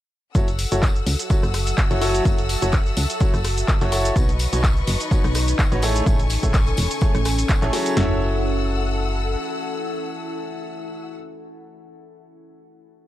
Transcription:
0.35 F#1 F#3 E4 F#4 A4 C#5 F#5 E6, kick, tambourine, shaker
0.47 closed hi-hat, tambourine, shaker
0.59 E5, open hi-hat, tambourine
0.71 F#1 F#3 E4 F#4 A4 C#5, closed hi-hat, tambourine, shaker
0.76 A5
0.83 kick, clap, tambourine, shaker
0.96 tambourine, shaker
1.06 C#2, open hi-hat, tambourine
1.19 closed hi-hat, tambourine, shaker
1.30 F#3 E4 F#4 A4 C#5, kick, tambourine, shaker
1.43 F#1, cross-stick, tambourine, shaker
1.54 cross-stick, open hi-hat, tambourine
1.67 closed hi-hat, tambourine, shaker
1.78 kick, clap, tambourine, shaker
1.91 F#1 F#3 E4 F#4 A4 C#5, closed hi-hat, tambourine, shaker
2.01 F#3 E4 F#4 A4 C#5, open hi-hat, tambourine
2.15 closed hi-hat, tambourine, shaker
2.25 F#1, kick, tambourine, shaker
2.38 closed hi-hat, tambourine, shaker
2.49 open hi-hat, tambourine
2.62 F#1 F#3 E4 F#4 A4 C#5, closed hi-hat, tambourine, shaker
2.72 kick, clap, tambourine, shaker
2.86 tambourine, shaker
2.97 C#2, open hi-hat, tambourine
3.10 closed hi-hat, tambourine, shaker
3.20 F#3 E4 F#4 A4 C#5, kick, tambourine, shaker
3.34 F#1, cross-stick, tambourine, shaker
3.44 cross-stick, open hi-hat, tambourine
3.57 closed hi-hat, tambourine, shaker
3.68 kick, clap, tambourine, shaker
3.81 F#1 F#3 E4 F#4 A4 C#5, clap, closed hi-hat, tambourine, shaker
3.92 E4 F#4 A4 C#5, open hi-hat, tambourine
4.05 closed hi-hat, tambourine, shaker
4.16 B1 B2 D#4 B4 C#5 D#5 C#6, kick, tambourine, shaker
4.29 closed hi-hat, tambourine, shaker
4.39 open hi-hat, tambourine
4.53 B1 B2 D#4 F#4 B4 C#5, closed hi-hat, tambourine, shaker
4.64 kick, clap, tambourine, shaker
4.77 shaker
4.85 F#1 B5, open hi-hat, tambourine
5.00 closed hi-hat, tambourine, shaker
5.11 B2 D#4 F#4 B4 C#5, kick, tambourine, shaker
5.24 B1, cross-stick, tambourine, shaker
5.35 cross-stick, open hi-hat, tambourine
5.48 closed hi-hat, tambourine, shaker
5.59 kick, clap, tambourine, shaker
5.72 A1 D#4 F#4 B4 C#5, closed hi-hat, tambourine, shaker
5.82 A3 C#4 E4 G#4 A4 C#5 G#5 C#6, open hi-hat, tambourine
5.95 closed hi-hat, tambourine, shaker
6.06 A1 A3 E4 G#4 A4 C#5, kick, tambourine, shaker
6.19 closed hi-hat, tambourine, shaker
6.26 A4, tambourine
6.30 open hi-hat
6.43 A1 A3 E4 G#4 A4 C#5 G#5, kick, closed hi-hat, tambourine, shaker
6.54 kick, clap, tambourine, shaker
6.67 tambourine, shaker
6.77 E1, open hi-hat, tambourine
6.91 closed hi-hat, tambourine, shaker
7.01 A3 E4 G#4 A4 C#5, kick, tambourine, shaker
7.14 A1, cross-stick, closed hi-hat, tambourine, shaker
7.25 cross-stick, open hi-hat, tambourine
7.38 closed hi-hat, tambourine, shaker
7.49 kick, clap, tambourine, shaker
7.62 A1 A3 E4 G#4 A4 C#5, clap, closed hi-hat, tambourine, shaker
7.73 F#3 E4 G#4 A4 C#5, open hi-hat, tambourine
7.86 closed hi-hat, tambourine, shaker
7.97 F#1 E4 F#4 A4 C#5 F#5 E6, snare, floor tom
8.05 A4
8.12 F#5

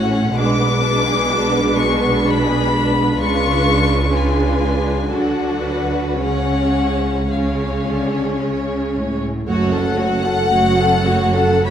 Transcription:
Already playing: A1 A2 A3 C#4 F#4 C#5 F#5
0.10 C#4
0.35 B1 B2 G#3 D4 B4 D6
0.59 B3
0.83 D4
1.08 G#4
1.32 D4
1.53 B3
1.77 G#3 C#6
2.01 B3
2.24 D4 B5
2.48 G#4
2.71 D4
2.94 B3
3.17 C#2 C#3 G#3 D4 F4 B4 C#6
4.12 G#3 D4 F4 B4 G#5
5.11 D2 D3 F#3 D4 F#4 A4 F#5
5.63 B4
6.18 C#2 C#3 G#3 C#4 C#5 F#5
7.29 C#3 G#3 C#4 C#5 F5
7.85 D3
8.39 C#3
8.93 A2
9.47 F#1 F#2 A3 F#4 C#5 F#5
9.73 F#3 C#4 A4 F#5
9.99 A3 F#4 C#5
10.24 F#3 C#4 A4 F#5
10.51 F#1 F#2 A3 F#4 C#5
10.77 F#3 C#4 A4 F#5
11.06 A3 F#4 C#5
11.34 F#3 C#4 A4 F#5
11.63 F#1 F#2 A3 F#4 C#5 B5

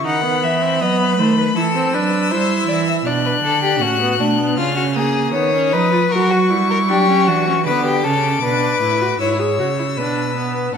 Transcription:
0.05 D#3 D#4 F#5 B5
0.24 B3
0.43 E3 E5
0.62 C4
0.81 F#3 B3 D#5
1.00 B4
1.18 D#3 A3 C5
1.38 B4
1.56 E3 E4 A4 E6
1.75 C4
1.94 F#3 D4 B4
2.31 G3 E4 C5
2.68 E3 D5
2.88 E5
3.05 B2 D4 D5 F#6
3.25 B4
3.43 D3 A4
3.63 G4
3.81 A2 C#4 F#4
4.01 B3
4.19 B2 A3 D4
4.39 B3
4.57 C#3 C#4 F4 F6
4.76 F#4
4.95 A#3 G#4 D#6
5.33 D#3 B3 C#5
5.54 C#4
5.72 F3 D#4 B4
5.92 F4
6.11 F#3 F#4 A#4 C#6
6.31 F#4
6.50 G3 E4
6.70 A#4
6.89 F#3 D4 G4
7.09 C#4
7.27 E3 D4 F#4
7.47 C#4
7.66 D3 B3 B4 D6
7.85 G4
8.04 C#3 C#4 A4
8.43 B2 D4 B4
8.82 A2 E4
9.01 F#4
9.20 G#2 E4 C#5 E6
9.39 G#4
9.59 C#3 F#4
9.78 E4
9.97 B2 D4 B4
10.36 B3

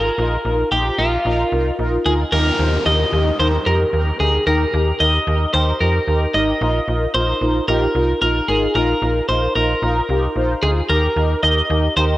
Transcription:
Already playing: G#1 A#4
0.18 A#1 D#4 F4 A#4
0.45 A#1 D#4 F4 A#4
0.72 A#1 D#4 F4 G4 C5
0.98 A#1 D#4 F4 A#4
1.25 A#1 D#4 F4 A#4
1.52 C2 D#4 F4 A#4
1.79 A#1 D#4 F4 A#4
2.05 D2 D#4 F4 G#4 A#4
2.32 D#2 D#4 G4 A#4, downlifter
2.59 D#2 D#4 G4 C5
2.86 D#2 D#4 G4 A#4 D#5
3.13 D#2 D#4 G4 A#4
3.40 D#2 D#4 G4 A#4 C5
3.66 F2 D#4 G4 A#4
3.93 D#2 D#4 G4 A#4
4.20 D2 D#4 G4 G#4 A#4
4.47 D#2 D#4 G4 A#4
4.73 D#2 D#4 G4 A#4
5.00 D#2 D#4 G4 A#4 D#5
5.27 D#2 D#4 G4 A#4
5.54 D#2 D#4 G4 A#4 C5
5.81 F2 D#4 G4 A#4
6.07 D#2 D#4 G4 A#4
6.34 G#1 D#4 G4 A#4 D#5
6.61 A#1 D#4 F4 A#4
6.88 A#1 D#4 F4 A#4
7.14 A#1 D#4 F4 A#4 C5
7.41 A#1 D#4 F4 A#4
7.68 A#1 D#4 F4 G4 A#4
7.95 C2 D#4 F4 A#4
8.22 A#1 D#4 F4 A#4
8.48 G#1 D#4 F4 G#4 A#4
8.75 A#1 D#4 F4 A#4
9.02 A#1 D#4 F4 A#4
9.29 A#1 D#4 F4 A#4 C5
9.56 A#1 D#4 F4 A#4
9.82 A#1 D#4 F4 A#4
10.09 C2 D#4 F4 G4
10.36 A#1 D#4 F4 C5
10.63 D2 D#4 F4 G#4
10.89 D#2 D#4 G4 A#4
11.16 D#2 D#4 G4 A#4
11.43 D#2 D#4 G4 A#4 D#5
11.70 D#2 D#4 G4 A#4
11.97 D#2 D#4 G4 A#4 C5

